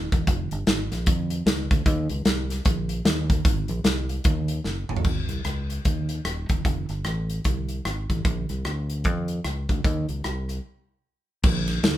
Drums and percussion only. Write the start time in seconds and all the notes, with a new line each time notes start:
0.12 kick, closed hi-hat
0.27 kick, closed hi-hat
0.51 closed hi-hat
0.67 snare, closed hi-hat
0.91 snare, closed hi-hat
1.06 kick, closed hi-hat
1.30 closed hi-hat
1.47 snare, closed hi-hat
1.71 kick, closed hi-hat
1.86 kick, closed hi-hat
2.09 closed hi-hat
2.25 snare, closed hi-hat
2.50 snare, closed hi-hat
2.65 kick, closed hi-hat
2.89 closed hi-hat
3.05 snare, closed hi-hat
3.30 kick, closed hi-hat
3.45 kick, closed hi-hat
3.68 closed hi-hat
3.84 snare, closed hi-hat
4.09 closed hi-hat
4.24 kick, closed hi-hat
4.48 closed hi-hat
4.64 snare
4.89 mid tom
4.96 floor tom
5.04 kick, crash
5.29 cross-stick, closed hi-hat
5.45 cross-stick, closed hi-hat
5.70 cross-stick, closed hi-hat
5.85 kick, closed hi-hat
6.09 closed hi-hat
6.25 cross-stick, closed hi-hat
6.49 kick, closed hi-hat
6.65 kick, closed hi-hat
6.89 cross-stick, closed hi-hat
7.04 cross-stick, closed hi-hat
7.30 closed hi-hat
7.44 kick, closed hi-hat
7.69 closed hi-hat
7.85 cross-stick, closed hi-hat
8.10 kick, closed hi-hat
8.25 kick, closed hi-hat
8.49 cross-stick, closed hi-hat
8.65 cross-stick, closed hi-hat
8.90 closed hi-hat
9.04 kick, closed hi-hat
9.28 closed hi-hat
9.45 cross-stick, closed hi-hat
9.69 kick, closed hi-hat
9.84 kick, closed hi-hat
10.09 closed hi-hat
10.24 cross-stick, closed hi-hat
10.49 cross-stick, closed hi-hat
11.43 kick, crash
11.68 snare, ride
11.84 snare, ride